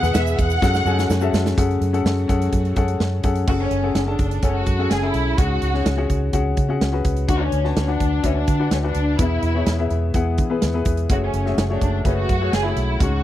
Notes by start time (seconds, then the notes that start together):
Already playing: B2 E3 B3 G#4 B4 E5 F#5
0.02 E2 G#4 B4 F#5, snare, shaker
0.15 E2 E5, snare, ride, shaker
0.27 shaker
0.38 E2 F#5, kick, ride, shaker
0.50 ride, shaker
0.61 F#2 C#3 G#3 A3 C#4 F#4 G#4 A4 F#5, kick, snare, shaker
0.74 snare, shaker
0.85 F#2 C#4 F#4 G#4 A4 G#5, shaker
0.99 snare, shaker
1.10 F#2, snare, shaker
1.21 C#4 F#4 G#4 A4 E5, shaker
1.33 F#2, snare, shaker
1.46 snare, shaker
1.57 F#2 C#3 F#3 A3 C#4 F#4 G#4 A4 F#5, kick, closed hi-hat
1.71 closed hi-hat
1.81 F#2, closed hi-hat
1.93 C#4 G#4 A4 F#5, closed hi-hat
2.05 F#2, snare
2.18 closed hi-hat
2.28 F#2 C#4 G#4 A4 F#5, kick, closed hi-hat
2.42 closed hi-hat
2.52 F#2, kick, closed hi-hat
2.65 closed hi-hat
2.76 F#2 C#4 G#4 A4 F#5, kick, closed hi-hat
2.88 closed hi-hat
3.00 F#2, snare
3.23 F#2 C#4 G#4 A4 F#5, kick, closed hi-hat
3.35 closed hi-hat
3.47 F#1 C#3 C#4 F#4 G#4 A4 F#5, kick, crash
3.60 C#4
3.71 F#1, closed hi-hat
3.83 C#4 G#4 A4 F#5
3.94 F#1 C#4, snare, closed hi-hat
4.07 C#4 D4 G#4 A4 A5
4.19 F#1, kick, closed hi-hat
4.31 closed hi-hat
4.43 F#1 C#4 G#4 A4 F#5, kick, closed hi-hat
4.55 F#4
4.66 F#2, kick, closed hi-hat
4.79 C#4 G#4 A4 F#5
4.90 F#1 G#4, snare, closed hi-hat
5.02 C#4 E4 G#4 A4 G#5
5.14 B1, closed hi-hat
5.38 C#2 G#2 C#4 F#4 G#4 F#5, kick, closed hi-hat
5.62 C#2, closed hi-hat
5.74 C#4 F#4 G#4 C#5, snare
5.85 C#2, snare, closed hi-hat
5.97 C#4 F#4 G#4 F#5
6.10 C#2, kick, closed hi-hat
6.33 C#2 C#4 F#4 G#4 F#5, kick, closed hi-hat
6.57 C#3, kick, closed hi-hat
6.69 C#4 F#4 G#4 F#5
6.81 C#2, snare, closed hi-hat
6.92 C#4 F#4 G#4 B4
7.05 C#2, kick, closed hi-hat
7.17 closed hi-hat
7.28 D2 D3 D4 F#4 B4 F#5, kick, closed hi-hat
7.41 C#4
7.52 D2, closed hi-hat
7.64 D4 F#4 B4 A5, snare
7.76 D2 C#4, snare, closed hi-hat
7.88 D4 F#4 B4 F#5
8.00 D2, kick, closed hi-hat
8.23 D2 C#4 D4 F#4 B4 E5, kick, closed hi-hat
8.36 D4
8.48 D3, kick, closed hi-hat
8.59 D4 F#4 B4 F#5
8.71 D2 C#4, snare, closed hi-hat
8.83 D4 F#4 B4 F#5
8.95 D2, closed hi-hat
9.19 E2 B2 B3 E4 G#4 E5, kick, closed hi-hat
9.43 E2, closed hi-hat
9.54 B3 E4 G#4 C#5
9.66 E2, snare, closed hi-hat
9.79 B3 E4 G#4 E5
9.90 E2, closed hi-hat
10.14 E2 B3 E4 G#4 F#5, kick, closed hi-hat
10.38 E3, kick, closed hi-hat
10.50 B3 E4 G#4 B4
10.62 E2, snare, closed hi-hat
10.74 B3 E4 G#4 B4
10.85 E2, kick, closed hi-hat
10.97 closed hi-hat
11.09 F#1 C#3 A3 F#4 G#4 C#5, kick, closed hi-hat
11.23 C#4
11.34 F#1, closed hi-hat
11.46 A3 F#4 G#4 E5, snare
11.57 F#1 C#4, snare, closed hi-hat
11.70 A3 D4 F#4 G#4 C#5
11.81 F#1, kick, closed hi-hat
12.05 F#1 A3 C#4 F#4 G#4 B4, kick, closed hi-hat
12.18 F#4
12.29 F#2, kick, closed hi-hat
12.41 A3 F#4 G#4 C#5
12.52 F#1 G#4, snare, closed hi-hat
12.65 A3 E4 F#4 G#4 C#5
12.76 B1, closed hi-hat
13.00 C#2 G#2 G#3 C#4 F#4 C#5, kick, closed hi-hat